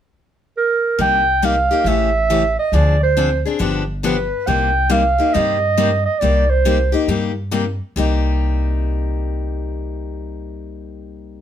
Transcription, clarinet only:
0.57 0.97 A#4 medium
1.01 1.47 G5 loud
1.45 1.89 F5 medium
1.88 2.59 E5 loud
2.59 2.76 D#5 medium
2.75 3.02 D5 medium
3.03 3.43 C5 medium
4.05 4.49 B4 medium
4.48 4.93 G5 loud
4.91 5.35 F5 medium
5.33 6.05 D#5 loud
6.05 6.21 D#5 medium
6.19 6.51 D5 medium
6.50 6.93 C5 medium

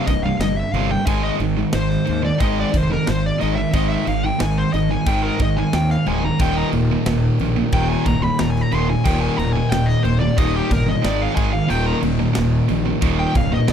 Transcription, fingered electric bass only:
0.08 0.30 C1 medium
0.39 0.62 G1 medium
0.73 0.95 G1 loud
1.07 1.29 G#1 loud
1.40 1.62 G#1 medium
1.74 1.96 G#1 medium
2.09 2.31 D#2 medium
2.41 2.63 G#1 loud
2.74 2.96 F1 medium
3.08 3.30 G#1 medium
3.42 3.64 G#1 medium
3.74 3.96 G#1 loud
4.07 4.29 G#1 medium
4.41 4.63 G#1 medium
4.74 4.96 G#1 medium
5.07 5.29 G#1 medium
5.40 5.62 G#1 medium
5.73 5.95 D#2 medium
6.07 6.29 D1 medium
6.40 6.62 D#1 medium
6.73 6.95 D#1 medium
7.06 7.28 D#1 medium
7.40 7.62 A#1 medium
7.73 7.95 D#1 medium
8.06 8.28 C1 medium
8.41 8.62 D#1 medium
8.73 8.95 D#1 medium
9.06 9.28 D#1 loud
9.39 9.61 D#1 loud
9.71 9.94 D#1 medium
10.05 10.27 D#1 medium
10.38 10.60 D#1 medium
10.71 10.93 G1 medium
11.04 11.26 G#1 medium
11.37 11.59 G#1 medium
11.70 11.92 D#1 medium
12.03 12.25 D#1 medium
12.38 12.59 D#1 loud
12.70 12.92 A#1 medium
13.03 13.25 D#1 loud
13.35 13.57 C1 medium
13.69 13.73 D#1 medium

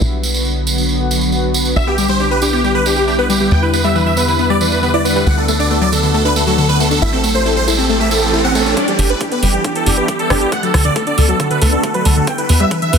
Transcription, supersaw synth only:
1.76 1.84 E5 medium
1.87 1.95 G4 medium
1.98 2.06 G4 medium
2.09 2.17 C5 medium
2.20 2.28 G4 medium
2.31 2.39 B4 medium
2.42 2.50 G4 medium
2.53 2.61 G4 medium
2.64 2.72 G4 medium
2.75 2.83 B4 medium
2.86 2.94 G4 medium
2.97 3.05 G4 medium
3.08 3.16 G4 medium
3.19 3.27 B4 medium
3.30 3.38 G4 medium
3.41 3.49 G4 medium
3.51 3.60 G5 loud
3.63 3.71 B4 medium
3.73 3.82 B4 medium
3.84 3.92 E5 medium
3.95 4.03 B4 medium
4.06 4.14 E5 medium
4.17 4.25 B4 medium
4.28 4.36 B4 medium
4.39 4.47 B4 medium
4.50 4.58 D5 medium
4.61 4.69 B4 medium
4.72 4.80 B4 medium
4.83 4.91 B4 medium
4.94 5.02 D5 medium
5.05 5.13 B4 medium
5.16 5.24 B4 medium
5.27 5.35 F#5 medium
5.38 5.46 A4 medium
5.49 5.57 A4 medium
5.59 5.68 D5 medium
5.70 5.79 A4 medium
5.82 5.90 D5 medium
5.92 6.01 A4 medium
6.03 6.11 A4 medium
6.14 6.22 A4 medium
6.25 6.33 B4 medium
6.36 6.44 A4 medium
6.47 6.55 A4 medium
6.58 6.66 A4 medium
6.69 6.77 B4 medium
6.80 6.88 A4 medium
6.91 6.99 A4 medium
7.02 7.10 E5 medium
7.13 7.21 A4 medium
7.24 7.32 A4 medium
7.35 7.43 C5 medium
7.46 7.54 A4 medium
7.57 7.65 C5 loud
7.68 7.76 A4 medium
7.79 7.87 A4 medium
7.90 7.98 A4 medium
8.00 8.08 E5 medium
8.11 8.19 A4 medium
8.22 8.30 A4 medium
8.33 8.41 A4 medium
8.44 8.52 F#5 medium
8.55 8.63 A4 medium
8.66 8.74 A4 medium
8.77 8.85 D5 medium
8.88 8.96 G4 medium
8.99 9.07 G4 medium
9.10 9.18 B4 medium
9.21 9.29 G4 medium
9.32 9.40 B4 loud
9.43 9.51 G4 medium
9.54 9.62 G4 medium
9.65 9.73 G4 medium
9.76 9.84 A4 medium
9.86 9.95 G4 medium
9.97 10.06 G4 medium
10.08 10.16 G4 medium
10.19 10.27 A4 loud
10.30 10.38 G4 medium
10.41 10.49 G4 medium
10.52 10.60 F#5 medium
10.63 10.71 A4 medium
10.74 10.82 A4 medium
10.85 10.93 D5 medium
10.96 11.04 A4 medium
11.07 11.15 D5 medium
11.18 11.26 A4 medium
11.29 11.37 A4 medium
11.40 11.48 A4 medium
11.51 11.59 B4 medium
11.62 11.70 A4 medium
11.73 11.81 A4 medium
11.83 11.92 A4 medium
11.94 12.03 B4 medium
12.05 12.13 A4 medium
12.16 12.24 A4 medium
12.27 12.35 G5 loud
12.38 12.46 B4 medium
12.49 12.57 B4 medium
12.60 12.68 E5 medium
12.71 12.79 B4 medium
12.82 12.90 E5 loud
12.93 12.98 B4 medium

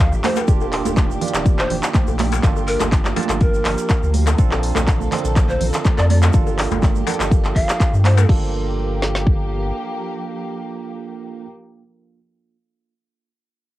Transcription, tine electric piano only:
0.00 0.46 A#3 medium
0.00 0.46 D4 medium
0.00 0.46 F4 medium
0.00 0.46 A4 medium
0.48 1.19 A#3 loud
0.48 1.19 D4 medium
0.48 1.19 F4 medium
0.48 1.19 G4 loud
1.21 2.41 A#3 medium
1.21 2.41 D4 medium
1.21 2.41 F4 medium
1.21 2.41 G4 medium
2.43 3.14 A#3 loud
2.43 3.14 D4 medium
2.43 3.14 F4 medium
2.43 3.14 A4 loud
3.16 4.36 A#3 medium
3.16 4.36 D4 medium
3.16 4.36 F4 medium
3.16 4.36 A5 medium
4.39 5.09 C4 loud
4.39 5.09 D4 medium
4.39 5.09 F4 medium
4.39 5.09 A4 loud
5.12 6.31 C4 medium
5.12 6.31 D4 medium
5.12 6.31 F4 medium
5.12 6.31 A4 medium
6.34 7.04 A#3 loud
6.34 7.04 D4 medium
6.34 7.04 F4 medium
6.34 7.04 A4 loud
7.07 8.26 A#3 medium
7.07 8.26 D4 medium
7.07 8.26 F4 medium
7.07 8.26 A4 medium
8.29 11.45 A#3 medium
8.29 11.45 D4 medium
8.29 11.45 F4 medium
8.29 11.45 A4 medium

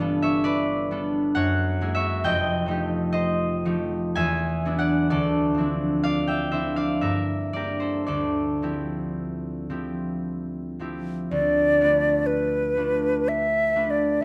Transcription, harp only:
0.00 1.41 G1 medium
0.00 1.41 G2 medium
0.00 0.90 G3 medium
0.00 0.90 B3 medium
0.00 0.90 D4 medium
0.00 1.42 G4 medium
0.00 0.91 A4 medium
0.00 0.43 D5 medium
0.00 1.41 F5 loud
0.00 1.41 G5 loud
0.22 1.35 C#5 medium
0.22 0.62 E5 loud
0.44 1.41 B4 medium
0.44 1.40 D5 loud
0.91 1.41 G3 medium
0.91 1.41 B3 medium
0.91 1.41 D4 medium
0.91 1.41 A4 medium
1.35 2.29 F#2 medium
1.35 1.95 C#5 medium
1.35 2.28 F#5 loud
1.81 2.29 G#3 medium
1.81 2.29 A#3 medium
1.81 2.29 E4 medium
1.81 2.30 G#4 medium
1.95 2.29 C#5 medium
1.95 2.28 E5 loud
2.24 4.20 F1 medium
2.24 4.21 F2 medium
2.24 3.11 D#5 medium
2.24 4.20 G5 loud
2.66 3.64 F3 medium
2.66 3.65 A3 medium
2.66 3.65 D#4 medium
2.71 3.65 G4 medium
3.13 4.20 C5 medium
3.13 4.19 D#5 loud
3.65 4.21 F3 medium
3.65 4.21 A3 medium
3.65 4.21 D#4 medium
3.65 4.21 G4 medium
4.15 5.15 E2 medium
4.15 6.27 E5 medium
4.15 5.14 G#5 loud
4.65 5.15 F#3 medium
4.65 5.15 B3 medium
4.65 5.56 D4 medium
4.65 5.57 E4 medium
4.79 5.09 D5 medium
4.79 5.14 F#5 loud
5.10 7.07 D2 medium
5.10 7.08 A4 medium
5.10 6.03 D5 loud
5.55 6.52 F3 medium
5.55 6.52 C4 medium
5.55 6.53 E4 medium
5.61 6.52 D4 medium
6.03 6.76 D5 medium
6.03 6.75 F5 loud
6.27 6.50 E5 medium
6.27 6.70 G5 loud
6.51 7.07 F3 soft
6.51 7.08 C4 soft
6.51 7.54 D4 soft
6.51 8.62 E4 medium
6.51 7.07 C5 medium
6.51 6.95 E5 loud
6.76 7.52 D5 medium
6.76 7.20 F5 loud
7.01 8.12 G2 medium
7.01 7.53 A#4 medium
7.01 10.91 E5 loud
7.53 11.36 G3 soft
7.53 8.13 A#3 soft
7.53 11.45 D4 soft
7.53 8.62 G4 medium
7.53 8.13 A#4 medium
7.53 7.99 D5 medium
7.80 8.06 A4 medium
7.80 8.27 C5 medium
8.07 11.30 D2 medium
8.07 11.98 A4 medium
8.07 11.97 D5 medium
8.62 9.69 F3 soft
8.62 9.69 C4 soft
8.62 9.69 E4 soft
8.62 9.70 G4 medium
9.70 10.79 F3 soft
9.70 10.79 C4 soft
9.70 10.79 E4 soft
9.70 10.80 G4 medium
10.79 14.24 F3 soft
10.79 11.36 C4 soft
10.79 11.36 E4 soft
10.79 11.37 G4 soft
11.31 14.21 D2 medium
11.81 12.76 A3 soft
11.81 12.76 D4 soft
11.81 12.76 F4 soft
11.81 12.77 B4 soft
12.77 13.75 A3 soft
12.77 13.75 D4 soft
12.77 13.75 F4 soft
12.77 13.75 B4 soft
13.75 14.24 A3 soft
13.75 14.24 D4 soft
13.75 14.24 F4 soft
13.75 14.24 B4 soft

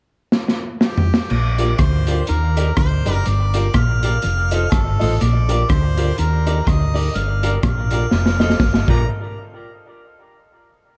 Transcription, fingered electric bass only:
1.31 1.72 A#1 loud
1.80 2.21 D2 medium
2.30 2.71 D#2 loud
2.78 3.02 D2 medium
3.07 3.24 F#1 medium
3.27 3.68 G1 loud
3.75 4.16 A#1 medium
4.25 4.66 F1 loud
4.73 4.97 G1 medium
5.02 5.19 A1 medium
5.22 5.63 A#1 loud
5.70 6.11 D2 medium
6.19 6.60 D#2 medium
6.67 7.08 D2 medium
7.16 7.57 G1 loud
7.64 8.05 A#1 medium
8.12 8.53 F1 loud
8.60 8.84 G1 medium
8.89 9.07 A#1 medium

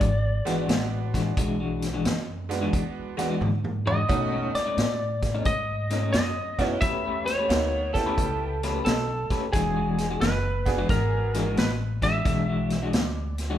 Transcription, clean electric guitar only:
0.46 0.58 E3 medium
0.46 0.57 G#3 medium
0.46 0.57 D4 medium
0.46 0.57 F#4 medium
0.58 0.77 E3 medium
0.58 0.76 G#3 medium
0.58 0.76 D4 medium
0.58 0.76 F#4 medium
1.14 1.29 E3 medium
1.14 1.29 G#3 medium
1.14 1.30 D4 medium
1.14 1.30 F#4 medium
1.38 1.60 E3 medium
1.38 1.59 G#3 medium
1.38 1.59 D4 medium
1.38 1.59 F#4 medium
1.60 1.86 E3 medium
1.60 1.86 G#3 medium
1.60 1.86 D4 medium
1.60 1.86 F#4 medium
1.94 2.12 E3 medium
1.94 2.12 G#3 medium
1.94 2.12 D4 medium
1.94 2.12 F#4 medium
2.61 2.80 E3 medium
2.61 2.80 G#3 medium
2.61 2.80 D4 medium
2.61 2.80 F#4 medium
3.18 3.29 E3 medium
3.18 3.29 G#3 medium
3.18 3.29 D4 medium
3.18 3.28 F#4 medium
3.30 3.49 E3 medium
3.30 3.48 G#3 medium
3.30 3.48 D4 medium
3.30 3.48 F#4 medium
3.86 4.01 E3 medium
3.86 4.01 G#3 medium
3.86 4.01 D4 medium
3.86 4.02 F#4 medium
4.09 4.32 B2 medium
4.09 4.31 A3 medium
4.09 4.31 C#4 medium
4.09 4.31 D#4 medium
4.32 4.58 B2 medium
4.32 4.58 A3 medium
4.32 4.58 C#4 medium
4.32 4.58 D#4 medium
4.66 4.85 B2 medium
4.66 4.85 A3 medium
4.66 4.84 C#4 medium
4.66 4.84 D#4 medium
5.34 5.53 B2 medium
5.34 5.53 A3 medium
5.34 5.53 C#4 medium
5.34 5.52 D#4 medium
5.90 6.02 B2 medium
5.90 6.02 A3 medium
5.90 6.02 C#4 medium
5.90 6.01 D#4 medium
6.02 6.21 B2 medium
6.02 6.21 A3 medium
6.02 6.21 C#4 medium
6.02 6.20 D#4 medium
6.59 6.74 B2 medium
6.59 6.74 A3 medium
6.59 6.74 C#4 medium
6.59 6.74 D#4 medium
6.82 7.04 A3 medium
6.82 7.04 C#4 medium
6.82 7.04 G4 medium
6.82 7.04 B4 loud
7.05 7.31 A3 medium
7.05 7.31 C#4 medium
7.05 7.31 G4 medium
7.05 7.31 B4 medium
7.38 7.57 A3 medium
7.38 7.57 C#4 medium
7.38 7.57 G4 medium
7.38 7.56 B4 medium
8.06 8.25 A3 medium
8.06 8.25 C#4 medium
8.06 8.25 G4 medium
8.06 8.25 B4 medium
8.64 8.74 A3 medium
8.64 8.74 C#4 medium
8.64 8.74 G4 medium
8.64 8.73 B4 loud
8.74 8.93 A3 medium
8.74 8.93 C#4 medium
8.74 8.93 G4 medium
8.74 8.93 B4 medium
9.31 9.46 A3 medium
9.31 9.46 C#4 medium
9.31 9.46 G4 medium
9.31 9.46 B4 medium
9.54 9.76 E3 medium
9.54 9.76 G#3 medium
9.54 9.75 D4 medium
9.54 9.75 F#4 medium
9.76 10.03 E3 medium
9.76 10.03 G#3 medium
9.76 10.02 D4 medium
9.76 10.02 F#4 medium
10.10 10.29 E3 medium
10.10 10.29 G#3 medium
10.10 10.29 D4 medium
10.10 10.29 F#4 medium
10.78 10.97 E3 medium
10.78 10.97 G#3 medium
10.78 10.97 D4 medium
10.78 10.97 F#4 medium
11.34 11.46 E3 medium
11.34 11.45 G#3 medium
11.34 11.45 D4 medium
11.34 11.45 F#4 loud
11.46 11.65 E3 medium
11.46 11.65 G#3 medium
11.46 11.65 D4 medium
11.46 11.64 F#4 medium
12.02 12.17 E3 medium
12.02 12.18 G#3 medium
12.02 12.18 D4 medium
12.02 12.18 F#4 medium
12.25 12.48 E3 medium
12.25 12.47 G#3 medium
12.25 12.47 D4 medium
12.25 12.46 F#4 medium
12.47 12.75 E3 medium
12.47 12.74 G#3 medium
12.47 12.74 D4 medium
12.47 12.74 F#4 medium
12.83 13.01 E3 medium
12.83 13.01 G#3 medium
12.83 13.01 D4 medium
12.83 13.01 F#4 medium
13.50 13.58 E3 medium
13.50 13.58 G#3 medium
13.50 13.58 D4 medium
13.50 13.58 F#4 medium

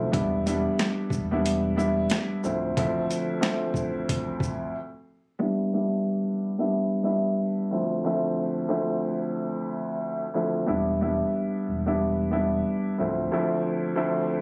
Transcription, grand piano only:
0.00 0.10 D2 medium
0.00 0.11 F3 medium
0.00 0.11 A3 medium
0.00 0.11 C4 medium
0.00 0.11 E4 medium
0.12 0.43 G3 medium
0.12 0.43 B3 medium
0.12 0.44 D4 medium
0.12 0.44 E4 loud
0.46 1.24 G3 loud
0.46 1.24 B3 medium
0.46 1.24 D4 medium
0.46 1.25 E4 loud
1.31 1.74 G3 medium
1.31 1.75 B3 medium
1.31 1.75 D4 medium
1.31 1.75 E4 loud
1.76 2.39 G3 medium
1.76 2.39 B3 medium
1.76 2.39 D4 medium
1.76 2.39 E4 loud
2.43 2.74 D2 medium
2.43 2.75 F3 medium
2.43 2.75 A3 medium
2.43 2.75 C4 medium
2.43 2.75 E4 medium
2.77 3.38 D2 medium
2.77 3.39 F3 medium
2.77 3.39 A3 medium
2.77 3.39 C4 medium
2.77 3.39 E4 loud
3.41 4.74 D2 medium
3.41 4.74 F3 medium
3.41 4.74 A3 medium
3.41 4.74 C4 medium
3.41 4.75 E4 loud
5.39 5.71 G3 medium
5.39 5.71 B3 medium
5.39 5.71 D4 medium
5.39 5.71 E4 medium
5.73 6.51 G3 medium
5.73 6.51 B3 medium
5.73 6.52 D4 medium
5.73 6.52 E4 medium
6.58 7.02 G3 medium
6.58 7.02 B3 medium
6.58 7.03 D4 medium
6.58 7.03 E4 medium
7.03 7.66 G3 medium
7.03 7.66 B3 medium
7.03 7.67 D4 medium
7.03 7.67 E4 loud
7.71 8.02 D2 medium
7.71 8.02 F3 medium
7.71 8.02 A3 medium
7.71 8.03 C4 medium
7.71 8.03 E4 medium
8.04 8.66 D2 medium
8.04 8.66 F3 medium
8.04 8.66 A3 medium
8.04 8.67 C4 medium
8.04 8.67 E4 loud
8.68 10.23 D2 medium
8.68 10.23 F3 medium
8.68 10.24 A3 medium
8.68 10.24 C4 medium
8.68 10.24 E4 loud
10.34 10.65 D2 medium
10.34 10.66 F3 medium
10.34 10.66 A3 medium
10.34 10.66 C4 medium
10.34 10.66 E4 medium
10.66 10.98 G3 medium
10.66 10.98 B3 medium
10.66 10.99 D4 medium
10.66 10.99 E4 loud
11.01 11.79 G3 medium
11.01 11.79 B3 medium
11.01 11.79 D4 medium
11.01 11.79 E4 loud
11.86 12.29 G3 medium
11.86 12.30 B3 medium
11.86 12.30 D4 medium
11.86 12.30 E4 loud
12.31 12.94 G3 medium
12.31 12.94 B3 medium
12.31 12.94 D4 medium
12.31 12.94 E4 loud
12.98 13.29 D2 medium
12.98 13.30 F3 medium
12.98 13.30 A3 medium
12.98 13.30 C4 medium
12.98 13.30 E4 medium
13.32 13.93 D2 medium
13.32 13.94 F3 medium
13.32 13.94 A3 medium
13.32 13.94 C4 medium
13.32 13.94 E4 loud
13.96 14.41 D2 medium
13.96 14.41 F3 medium
13.96 14.41 A3 medium
13.96 14.41 C4 medium
13.96 14.41 E4 loud

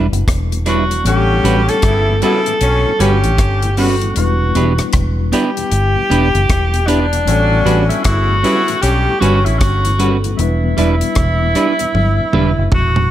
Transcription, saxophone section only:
1.05 1.79 G2 medium
1.05 1.79 G3 medium
1.05 1.79 C#4 loud
1.84 2.15 C#3 medium
1.84 2.15 B3 medium
1.84 2.15 E4 medium
2.23 2.54 C#3 medium
2.23 2.54 B3 medium
2.23 2.54 E4 loud
2.61 2.92 G2 medium
2.61 2.92 F#3 medium
2.61 2.92 C#4 loud
2.99 3.73 G2 medium
2.99 3.73 G3 medium
2.99 3.73 C#4 medium
7.27 8.01 G2 medium
7.27 8.01 F#3 medium
7.27 8.01 C#4 loud
8.05 8.36 C#3 medium
8.05 8.36 B3 medium
8.05 8.36 E4 medium
8.44 8.75 C#3 medium
8.44 8.75 B3 medium
8.44 8.75 E4 loud
8.83 9.14 G2 loud
8.83 9.14 G3 loud
8.83 9.14 C#4 loud
9.21 9.96 G2 medium
9.21 9.96 F#3 medium
9.21 9.96 C#4 medium

